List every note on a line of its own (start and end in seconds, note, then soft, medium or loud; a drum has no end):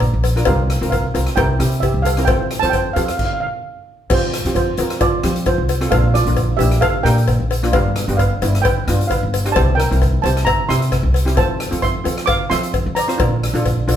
0.00 0.11 A#2 medium
0.00 0.13 D4 medium
0.00 0.13 F4 medium
0.00 0.14 C5 medium
0.00 0.21 D5 medium
0.00 0.20 A#5 loud
0.00 kick medium
0.00 closed hi-hat medium
0.00 cowbell medium
0.14 0.45 A#1 medium
0.24 closed hi-hat medium
0.24 cowbell medium
0.36 0.43 D4 medium
0.36 0.43 F4 medium
0.36 0.43 A#4 medium
0.36 cross-stick medium
0.36 closed hi-hat medium
0.45 0.79 C2 medium
0.45 0.67 C4 medium
0.45 0.67 F4 medium
0.45 0.67 G4 medium
0.45 0.89 A#4 medium
0.45 0.89 F5 medium
0.45 kick loud
0.45 closed hi-hat medium
0.45 cowbell loud
0.70 cross-stick medium
0.70 closed hi-hat medium
0.81 1.12 C2 medium
0.81 1.02 C4 medium
0.81 1.02 F4 medium
0.81 1.02 A#4 medium
0.81 closed hi-hat medium
0.90 1.35 A#4 medium
0.90 1.38 F5 medium
0.90 kick medium
0.90 closed hi-hat medium
0.90 cowbell medium
1.14 1.26 C2 medium
1.14 1.35 C4 medium
1.14 1.38 F4 medium
1.14 1.38 A#4 medium
1.14 closed hi-hat medium
1.14 cowbell medium
1.27 cross-stick medium
1.27 closed hi-hat medium
1.36 1.59 C2 loud
1.36 1.56 C4 medium
1.36 1.56 E4 medium
1.36 1.56 G4 medium
1.36 1.80 A#4 medium
1.36 1.84 G5 loud
1.36 kick loud
1.36 closed hi-hat medium
1.36 cowbell loud
1.59 1.93 C3 medium
1.59 1.95 C4 medium
1.59 1.95 E4 medium
1.59 1.95 G4 medium
1.59 cross-stick medium
1.59 closed hi-hat medium
1.72 closed hi-hat medium
1.80 2.04 G4 medium
1.80 2.05 E5 medium
1.80 kick medium
1.80 closed hi-hat medium
1.80 cowbell medium
1.94 2.26 C2 medium
2.02 2.15 A4 medium
2.02 2.13 F5 medium
2.02 closed hi-hat medium
2.06 cowbell medium
2.17 2.24 C4 medium
2.17 2.24 E4 medium
2.17 2.25 A#4 medium
2.17 cross-stick medium
2.17 closed hi-hat medium
2.25 2.61 F2 medium
2.25 2.49 C4 medium
2.25 2.61 C5 medium
2.25 2.59 G5 loud
2.25 kick loud
2.25 closed hi-hat medium
2.25 cowbell loud
2.29 2.49 F4 medium
2.29 2.50 A4 medium
2.51 cross-stick medium
2.51 closed hi-hat medium
2.60 2.94 F2 medium
2.60 2.84 C4 medium
2.60 2.72 C5 medium
2.60 2.72 A5 loud
2.60 closed hi-hat medium
2.64 2.84 F4 medium
2.64 2.84 A4 medium
2.70 2.95 C5 medium
2.70 2.95 G5 medium
2.70 kick medium
2.70 closed hi-hat medium
2.74 cowbell medium
2.93 3.08 F2 medium
2.93 3.19 C4 medium
2.93 3.19 F4 medium
2.93 3.20 G4 medium
2.93 3.04 A4 medium
2.93 3.01 F5 medium
2.93 closed hi-hat medium
2.93 cowbell medium
3.02 3.09 F5 medium
3.08 3.16 F5 medium
3.08 cross-stick medium
3.08 closed hi-hat medium
3.18 3.24 F5 medium
3.18 kick loud
3.18 crash medium
3.25 3.32 F5 medium
3.33 3.39 F5 medium
3.40 3.46 F5 medium
3.47 3.55 F5 medium
4.10 4.43 F2 medium
4.10 4.31 C4 medium
4.10 4.31 F4 medium
4.10 4.53 F4 medium
4.10 4.31 G4 medium
4.10 4.54 C5 medium
4.10 kick loud
4.10 crash loud
4.10 cowbell medium
4.34 cross-stick medium
4.34 closed hi-hat medium
4.45 4.76 F2 medium
4.45 4.66 C4 medium
4.45 4.66 F4 medium
4.45 4.66 G4 medium
4.45 closed hi-hat medium
4.55 4.98 F4 medium
4.55 5.02 C5 medium
4.55 kick medium
4.55 closed hi-hat medium
4.55 cowbell medium
4.77 4.99 F2 medium
4.77 5.06 C4 medium
4.77 5.07 F4 medium
4.77 5.07 A#4 medium
4.77 closed hi-hat medium
4.77 cowbell medium
4.90 cross-stick medium
4.90 closed hi-hat medium
5.00 5.43 F4 medium
5.00 5.43 D5 medium
5.00 kick loud
5.00 closed hi-hat medium
5.00 cowbell medium
5.23 5.56 F3 medium
5.23 5.58 C4 medium
5.23 5.59 F4 medium
5.23 5.59 G4 medium
5.23 cross-stick medium
5.23 closed hi-hat medium
5.36 closed hi-hat medium
5.46 5.89 F4 medium
5.46 5.89 C5 medium
5.46 kick medium
5.46 closed hi-hat medium
5.46 cowbell medium
5.58 5.89 C2 medium
5.69 closed hi-hat medium
5.69 cowbell medium
5.81 5.87 C4 medium
5.81 5.88 F4 medium
5.81 5.88 A4 medium
5.81 cross-stick medium
5.81 closed hi-hat medium
5.91 6.24 A#1 loud
5.91 6.13 A#3 medium
5.91 6.13 D4 medium
5.91 6.13 F4 medium
5.91 6.13 A4 medium
5.91 6.12 F5 medium
5.91 kick loud
5.91 closed hi-hat medium
5.91 cowbell loud
6.14 6.57 F4 medium
6.14 6.61 D5 medium
6.14 cross-stick medium
6.14 closed hi-hat medium
6.26 6.57 A#1 medium
6.26 6.47 A#3 medium
6.26 6.47 D4 medium
6.26 6.47 F4 medium
6.26 closed hi-hat medium
6.37 kick medium
6.37 closed hi-hat medium
6.37 cowbell medium
6.57 6.80 A#1 medium
6.57 6.87 A#3 medium
6.57 6.88 D4 medium
6.57 6.80 G4 medium
6.57 6.82 E5 loud
6.57 closed hi-hat medium
6.57 cowbell medium
6.61 6.88 E4 medium
6.72 cross-stick medium
6.72 closed hi-hat medium
6.81 7.03 A4 medium
6.81 7.05 F5 loud
6.81 kick loud
6.81 closed hi-hat medium
6.81 cowbell loud
7.03 7.37 A#2 medium
7.03 7.40 A#3 medium
7.03 7.40 D4 medium
7.03 7.40 G4 medium
7.03 7.47 A#4 medium
7.03 7.46 G5 loud
7.03 cross-stick medium
7.03 closed hi-hat medium
7.18 closed hi-hat medium
7.28 kick medium
7.28 closed hi-hat medium
7.28 cowbell medium
7.40 7.71 A#1 medium
7.51 closed hi-hat medium
7.51 cowbell medium
7.63 7.69 A#3 medium
7.63 7.69 D4 medium
7.63 7.70 F4 medium
7.63 cross-stick medium
7.63 closed hi-hat medium
7.73 8.06 G1 medium
7.73 7.95 B3 medium
7.73 7.95 D4 medium
7.73 7.95 G4 medium
7.73 8.16 B4 medium
7.73 8.16 F5 medium
7.73 kick loud
7.73 closed hi-hat medium
7.73 cowbell medium
7.96 cross-stick medium
7.96 closed hi-hat medium
8.08 8.39 G1 medium
8.08 8.29 B3 medium
8.08 8.29 D4 medium
8.08 8.29 G4 medium
8.08 closed hi-hat medium
8.17 8.61 B4 medium
8.17 8.60 F5 medium
8.17 kick medium
8.17 closed hi-hat medium
8.17 cowbell medium
8.42 8.63 G1 medium
8.42 8.70 B3 medium
8.42 8.70 D4 medium
8.42 8.70 E4 medium
8.42 closed hi-hat medium
8.42 cowbell medium
8.55 cross-stick medium
8.55 closed hi-hat medium
8.62 9.06 B4 medium
8.62 9.10 G5 loud
8.62 kick loud
8.62 closed hi-hat medium
8.62 cowbell medium
8.87 9.20 G2 medium
8.87 9.22 B3 medium
8.87 9.23 D4 medium
8.87 9.23 F4 medium
8.87 cross-stick loud
8.87 closed hi-hat medium
9.01 closed hi-hat medium
9.07 9.52 B4 medium
9.07 9.55 F5 medium
9.07 kick medium
9.07 cowbell medium
9.11 closed hi-hat medium
9.23 9.53 G1 medium
9.34 closed hi-hat loud
9.34 cowbell medium
9.45 9.51 B3 medium
9.45 9.52 D4 medium
9.45 9.52 G4 medium
9.45 cross-stick medium
9.45 closed hi-hat medium
9.52 9.76 C5 medium
9.52 9.77 A5 loud
9.52 cowbell loud
9.56 9.88 C2 medium
9.56 9.77 C4 medium
9.56 9.77 E4 medium
9.56 9.77 G4 medium
9.56 kick loud
9.56 closed hi-hat medium
9.75 10.20 A#4 medium
9.75 10.23 G5 loud
9.80 cross-stick medium
9.80 closed hi-hat medium
9.91 10.22 C2 medium
9.91 10.11 C4 medium
9.91 10.11 E4 medium
9.91 10.11 A#4 medium
9.91 closed hi-hat medium
10.02 kick medium
10.02 closed hi-hat medium
10.02 cowbell medium
10.22 10.45 C2 medium
10.22 10.52 C4 medium
10.22 10.52 E4 medium
10.22 10.52 G4 medium
10.22 10.45 C5 medium
10.22 10.46 A5 medium
10.22 closed hi-hat medium
10.22 cowbell medium
10.37 cross-stick medium
10.37 closed hi-hat medium
10.45 10.68 E5 medium
10.45 10.67 A#5 loud
10.45 kick loud
10.45 closed hi-hat medium
10.45 cowbell medium
10.69 11.01 C3 loud
10.69 11.04 C4 medium
10.69 11.05 E4 medium
10.69 11.05 G4 medium
10.69 11.12 E5 medium
10.69 11.11 C6 loud
10.69 cross-stick medium
10.69 closed hi-hat medium
10.82 closed hi-hat medium
10.92 kick medium
10.92 cross-stick medium
10.92 closed hi-hat medium
10.92 cowbell medium
11.03 11.34 C2 medium
11.14 closed hi-hat medium
11.14 cowbell medium
11.25 11.32 C4 medium
11.25 11.33 E4 medium
11.25 11.33 G4 medium
11.25 cross-stick medium
11.25 closed hi-hat medium
11.36 11.70 F2 loud
11.36 11.57 C4 medium
11.36 11.58 F4 medium
11.36 11.58 A4 medium
11.36 11.80 C5 medium
11.36 11.84 A5 medium
11.36 kick loud
11.36 closed hi-hat medium
11.36 cowbell medium
11.60 cross-stick medium
11.60 closed hi-hat medium
11.71 12.03 F2 medium
11.71 11.92 C4 medium
11.71 11.92 F4 medium
11.71 11.93 A4 medium
11.71 closed hi-hat medium
11.82 12.25 E5 medium
11.82 12.30 C6 medium
11.82 kick medium
11.82 closed hi-hat medium
11.82 cowbell medium
12.04 12.27 F2 medium
12.04 12.33 C4 medium
12.04 12.33 F4 medium
12.04 12.33 A4 medium
12.04 closed hi-hat medium
12.04 cowbell medium
12.18 cross-stick medium
12.18 closed hi-hat medium
12.26 12.50 F5 medium
12.26 12.48 D6 loud
12.26 kick loud
12.26 closed hi-hat medium
12.26 cowbell medium
12.50 12.84 F3 loud
12.50 12.86 C4 medium
12.50 12.86 F4 medium
12.50 12.86 A4 medium
12.50 12.94 E5 medium
12.50 12.93 C6 loud
12.50 cross-stick medium
12.50 closed hi-hat medium
12.63 closed hi-hat medium
12.74 kick medium
12.74 closed hi-hat medium
12.74 cowbell medium
12.86 13.17 F2 medium
12.95 13.96 D5 medium
12.95 13.96 A#5 medium
12.95 closed hi-hat loud
12.95 cowbell medium
13.08 13.15 C4 medium
13.08 13.15 F4 medium
13.08 13.15 C5 medium
13.08 cross-stick medium
13.08 closed hi-hat medium
13.18 13.52 A#1 medium
13.18 13.39 D4 medium
13.18 13.40 F4 medium
13.18 13.40 A#4 medium
13.18 kick loud
13.18 closed hi-hat medium
13.18 cowbell loud
13.44 cross-stick medium
13.44 closed hi-hat medium
13.54 13.85 A#1 medium
13.54 13.75 D4 medium
13.54 13.75 F4 medium
13.54 13.75 A4 medium
13.54 closed hi-hat medium
13.65 kick medium
13.65 closed hi-hat medium
13.65 cowbell medium
13.87 13.96 A#1 medium
13.87 13.96 D4 medium
13.87 13.96 F4 medium
13.87 13.96 A4 medium
13.87 closed hi-hat medium
13.87 cowbell medium